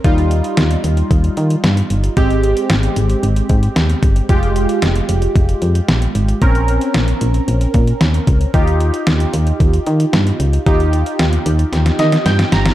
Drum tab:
HH |xxxxxxxxxxxxxxxx|xxxxxxxxxxxxxxxx|xxxxxxxxxxxxxxxx|xxxxxxxxxxxxxxxx|
SD |----o-------o---|----o-------o---|----o-------o---|----o-------o---|
BD |o-------o-------|o---------o---o-|o-------o-------|o---------o---o-|

HH |xxxxxxxxxxxxxxxx|xxxxxxxxxxxxxxxx|
SD |----o-------o---|----o---oooooooo|
BD |o-------o-------|o---------------|